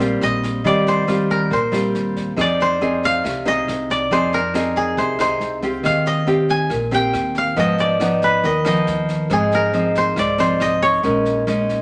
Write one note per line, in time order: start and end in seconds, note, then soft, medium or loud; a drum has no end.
0.00 0.19 A#1 medium
0.00 0.62 A#2 soft
0.00 0.61 G3 soft
0.00 0.61 C4 medium
0.00 0.29 D4 medium
0.00 0.61 F4 medium
0.00 0.98 G4 medium
0.00 0.98 A#4 medium
0.00 0.88 C5 medium
0.00 0.29 D5 medium
0.00 snare soft
0.21 0.62 A#1 medium
0.21 0.73 D#5 medium
0.21 cross-stick medium
0.21 snare soft
0.43 kick soft
0.43 snare soft
0.64 1.48 D#2 medium
0.64 1.49 D#3 medium
0.64 1.04 G3 medium
0.64 1.05 C4 medium
0.64 1.05 F4 medium
0.64 2.27 D5 medium
0.64 kick medium
0.64 snare soft
0.87 1.53 C5 medium
0.87 snare soft
1.07 1.51 G3 soft
1.07 1.51 C4 medium
1.07 1.51 F4 medium
1.07 cross-stick soft
1.07 snare soft
1.30 3.15 A#4 medium
1.30 kick soft
1.30 snare soft
1.50 1.92 A#1 medium
1.50 2.35 A#2 soft
1.50 2.61 C5 medium
1.50 kick medium
1.50 snare soft
1.72 2.34 G3 medium
1.72 2.34 C4 soft
1.72 2.34 F4 medium
1.72 cross-stick medium
1.72 snare soft
1.95 2.35 D#2 medium
1.95 snare soft
2.16 kick soft
2.16 snare soft
2.37 3.21 F2 medium
2.37 3.22 F3 medium
2.37 2.77 C4 soft
2.37 2.77 D#4 medium
2.37 2.78 G#4 medium
2.37 kick medium
2.37 cross-stick medium
2.37 snare soft
2.41 3.54 D5 medium
2.60 4.12 C5 medium
2.60 snare soft
2.81 3.24 C4 medium
2.81 3.24 D#4 medium
2.81 3.24 G#4 medium
2.81 snare soft
3.03 4.49 F5 loud
3.03 kick soft
3.03 snare soft
3.24 3.65 C2 medium
3.24 4.08 C3 soft
3.24 kick medium
3.24 cross-stick medium
3.24 snare soft
3.45 4.07 C4 medium
3.45 4.07 D#4 medium
3.45 4.08 G#4 medium
3.45 3.97 D#5 medium
3.45 snare soft
3.67 4.08 C2 medium
3.67 cross-stick medium
3.67 snare soft
3.90 5.51 D5 medium
3.90 kick soft
3.90 snare soft
4.11 4.94 F2 medium
4.11 4.95 F3 medium
4.11 4.39 C4 medium
4.11 4.39 D#4 medium
4.11 4.39 G#4 medium
4.11 4.98 C5 medium
4.11 kick medium
4.11 snare soft
4.33 6.18 A#4 medium
4.33 snare soft
4.54 5.16 C4 soft
4.54 5.16 D#4 medium
4.54 5.16 G#4 medium
4.54 cross-stick medium
4.54 snare soft
4.76 6.74 G#4 medium
4.76 kick soft
4.76 snare soft
4.97 5.38 C2 medium
4.97 5.82 C3 soft
4.97 5.20 C5 medium
4.97 kick soft
4.97 snare soft
5.19 5.59 C4 soft
5.19 5.59 D#4 medium
5.19 5.59 G#4 medium
5.19 6.92 C5 medium
5.19 cross-stick medium
5.19 snare soft
5.40 5.81 C2 medium
5.40 snare soft
5.62 6.24 C4 soft
5.62 6.24 F4 medium
5.62 6.24 G4 medium
5.62 kick soft
5.62 snare soft
5.83 6.67 D#2 medium
5.83 6.68 D#3 medium
5.83 7.30 F5 medium
5.83 kick medium
5.83 cross-stick medium
5.83 snare soft
6.06 7.59 D#5 medium
6.06 snare soft
6.27 6.70 C4 medium
6.27 6.70 F4 medium
6.27 6.70 G4 medium
6.27 snare soft
6.49 7.00 G#5 medium
6.49 kick soft
6.49 snare soft
6.69 7.11 A#1 medium
6.69 7.54 A#2 soft
6.69 kick medium
6.69 cross-stick medium
6.69 snare soft
6.91 7.53 C4 medium
6.91 7.53 F4 medium
6.91 7.54 G4 medium
6.91 8.29 G5 medium
6.91 snare soft
7.14 7.54 D#2 medium
7.14 cross-stick medium
7.14 snare soft
7.35 8.82 F5 medium
7.35 kick soft
7.35 snare soft
7.56 8.40 G#1 medium
7.56 8.41 G#2 medium
7.56 7.97 F3 medium
7.56 7.97 B3 medium
7.56 7.97 D#4 medium
7.56 7.86 D#5 medium
7.56 kick soft
7.56 snare soft
7.78 8.51 D5 medium
7.78 snare soft
8.00 8.43 F3 soft
8.00 8.44 B3 soft
8.00 8.44 D#4 medium
8.00 cross-stick soft
8.00 snare soft
8.22 9.61 B4 medium
8.22 kick soft
8.22 snare soft
8.43 8.84 D#2 medium
8.43 9.28 D#3 soft
8.43 8.67 D#5 medium
8.43 kick soft
8.43 snare soft
8.65 9.26 F3 medium
8.65 9.27 B3 soft
8.65 9.27 D#4 medium
8.65 10.25 D#5 medium
8.65 cross-stick medium
8.65 snare soft
8.87 9.27 D#2 medium
8.87 snare soft
9.09 kick soft
9.09 snare soft
9.30 10.13 G#1 medium
9.30 10.15 G#2 medium
9.30 9.70 F3 soft
9.30 9.70 C4 medium
9.30 9.71 D#4 medium
9.30 11.30 G#4 medium
9.30 kick medium
9.30 cross-stick soft
9.30 snare soft
9.52 11.39 A#4 medium
9.52 snare soft
9.73 10.17 F3 medium
9.73 10.17 C4 medium
9.73 10.17 D#4 medium
9.73 snare soft
9.95 10.40 C5 medium
9.95 kick soft
9.95 snare soft
10.16 10.57 C2 medium
10.16 11.01 G#2 soft
10.16 10.68 D5 medium
10.16 kick medium
10.16 cross-stick soft
10.16 snare soft
10.38 11.00 F3 medium
10.38 11.00 C4 soft
10.38 11.00 D#4 medium
10.38 10.88 C5 medium
10.38 snare soft
10.60 11.01 C2 medium
10.60 11.82 D#5 medium
10.60 cross-stick medium
10.60 snare soft
10.82 11.82 C#5 medium
10.82 kick soft
10.82 snare soft
11.03 11.82 A#1 medium
11.03 11.82 A#2 medium
11.03 11.43 G#3 medium
11.03 11.44 C#4 soft
11.03 11.44 D#4 medium
11.03 kick medium
11.03 snare soft
11.25 snare soft
11.47 11.82 G#3 medium
11.47 11.82 C#4 soft
11.47 11.82 D#4 medium
11.47 cross-stick soft
11.47 snare soft
11.69 kick soft
11.69 snare soft